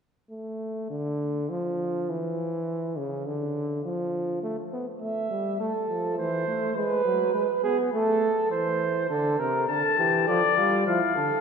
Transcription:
0.30 trombone A3
0.90 trombone D3
1.49 trombone F3
2.10 trombone E3
2.98 trombone C#3
3.27 trombone D3
3.85 trombone F3
4.43 trombone A3
4.73 trombone B3
5.01 trombone A3, flugelhorn E5
5.31 trombone G3
5.60 trombone A3, flugelhorn A4
5.89 trombone F3
6.18 trombone E3, flugelhorn C5
6.47 trombone A3
6.76 trombone G#3, flugelhorn B4
7.05 trombone F#3
7.34 trombone G#3
7.64 trombone B3, flugelhorn G#4
7.93 trombone A3, flugelhorn A4
8.51 trombone E3, flugelhorn C5
9.10 trombone D3, flugelhorn A4
9.39 trombone C3, flugelhorn A#4
9.68 trombone D3, flugelhorn A4, trumpet A5
9.98 trombone E3, flugelhorn G4
10.27 trombone F3, flugelhorn A4, trumpet D5
10.57 trombone G3, flugelhorn F4
10.86 trombone F3, flugelhorn E4, trumpet F5
11.16 trombone D3, flugelhorn A4

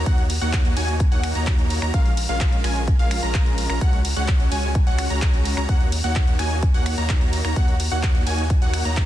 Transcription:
0.06 sub bass D#2, supersaw synth A#3 D#4 F#4 C#5 F#5, digital synth lead F#5, kick, closed hi-hat
0.18 closed hi-hat
0.30 open hi-hat, ride
0.41 sub bass D#2, supersaw synth A#3 D#4 F#4 C#5 F#5, digital synth lead F#5, closed hi-hat
0.53 kick, clap, closed hi-hat
0.65 closed hi-hat
0.77 sub bass D#2, supersaw synth A#3 D#4 F#4 C#5 G#5, digital synth lead G#5, open hi-hat, ride
0.88 closed hi-hat
1.00 kick, closed hi-hat
1.12 sub bass D#2, supersaw synth A#3 D#4 F#4 C#5 F#5, digital synth lead F#5, closed hi-hat
1.24 finger snap, open hi-hat, ride
1.35 sub bass D#2, supersaw synth A#3 D#4 F#4 C#5 A#5, digital synth lead A#5, closed hi-hat
1.47 kick, clap, closed hi-hat
1.59 closed hi-hat
1.70 open hi-hat, ride
1.82 sub bass D#2, supersaw synth A#3 D#4 F#4 C#5 A#5, digital synth lead A#5, finger snap, closed hi-hat
1.94 sub bass A#1, supersaw synth G#3 C#4 F4 A#4 F5, digital synth lead F5, kick, closed hi-hat
2.06 closed hi-hat
2.17 open hi-hat, ride
2.29 sub bass A#1, supersaw synth G#3 C#4 F4 A#4 F5, digital synth lead F5, closed hi-hat
2.41 kick, clap, closed hi-hat
2.52 closed hi-hat
2.64 sub bass A#1, supersaw synth G#3 C#4 F4 A#4 G#5, digital synth lead G#5, finger snap, open hi-hat, ride
2.76 closed hi-hat
2.88 kick, closed hi-hat
2.99 sub bass A#1, supersaw synth G#3 C#4 F4 A#4 F5, digital synth lead F5, closed hi-hat
3.11 finger snap, open hi-hat, ride
3.23 sub bass A#1, supersaw synth G#3 C#4 F4 A#4 A#5, digital synth lead A#5, closed hi-hat
3.34 kick, clap, closed hi-hat
3.46 closed hi-hat
3.58 open hi-hat, ride
3.70 sub bass A#1, supersaw synth G#3 C#4 F4 A#4 A#5, digital synth lead A#5, finger snap
3.81 sub bass C#2, supersaw synth G#3 F#4 F#5, digital synth lead F#5, kick, closed hi-hat
3.93 closed hi-hat
4.05 open hi-hat, ride
4.16 sub bass C#2, supersaw synth G#3 C#4 F#4 C#5 F#5, digital synth lead F#5, closed hi-hat
4.28 kick, clap, closed hi-hat
4.40 closed hi-hat
4.52 sub bass C#2, supersaw synth G#3 C#4 F#4 C#5 G#5, digital synth lead G#5, open hi-hat, ride
4.63 closed hi-hat
4.75 kick, closed hi-hat
4.87 sub bass C#2, supersaw synth G#3 C#4 F#4 C#5 F#5, digital synth lead F#5, closed hi-hat
4.98 finger snap, open hi-hat, ride
5.10 sub bass C#2, supersaw synth G#3 C#4 F#4 C#5 A#5, digital synth lead A#5, closed hi-hat
5.22 kick, clap, closed hi-hat
5.34 closed hi-hat
5.45 open hi-hat, ride
5.57 sub bass C#2, supersaw synth G#3 C#4 F#4 C#5 A#5, digital synth lead A#5, finger snap, closed hi-hat
5.69 sub bass D#2, supersaw synth A#3 D#4 F#4 C#5 F#5, digital synth lead F#5, kick, closed hi-hat
5.81 closed hi-hat
5.92 open hi-hat, ride
6.04 sub bass D#2, supersaw synth A#3 D#4 F#4 C#5 F#5, digital synth lead F#5
6.16 kick, clap, closed hi-hat
6.27 closed hi-hat
6.39 sub bass D#2, supersaw synth A#3 D#4 F#4 C#5 G#5, digital synth lead G#5, finger snap, open hi-hat, ride
6.51 closed hi-hat
6.63 kick, closed hi-hat
6.74 sub bass D#2, supersaw synth A#3 D#4 F#4 C#5 F#5, digital synth lead F#5, closed hi-hat
6.86 finger snap, open hi-hat, ride
6.98 sub bass D#2, supersaw synth A#3 D#4 F#4 C#5 A#5, digital synth lead A#5, closed hi-hat
7.09 kick, clap, closed hi-hat
7.21 closed hi-hat
7.33 open hi-hat, ride
7.45 sub bass D#2, supersaw synth A#3 D#4 F#4 C#5 A#5, digital synth lead A#5, finger snap, closed hi-hat
7.56 sub bass D#2, supersaw synth A#3 D#4 F#4 C#5 F#5, digital synth lead F#5, kick, closed hi-hat
7.68 closed hi-hat
7.80 open hi-hat, ride
7.91 sub bass D#2, supersaw synth A#3 D#4 F#4 C#5 F#5, digital synth lead F#5, closed hi-hat
8.03 kick, clap, closed hi-hat
8.15 closed hi-hat
8.27 sub bass D#2, supersaw synth A#3 D#4 F#4 C#5 G#5, digital synth lead G#5, open hi-hat, ride
8.38 closed hi-hat
8.50 kick, closed hi-hat
8.62 sub bass D#2, supersaw synth A#3 D#4 F#4 C#5 F#5, digital synth lead F#5, closed hi-hat
8.74 finger snap, open hi-hat, ride
8.85 sub bass D#2, supersaw synth A#3 D#4 F#4 C#5 A#5, digital synth lead A#5, closed hi-hat
8.97 kick, clap, closed hi-hat

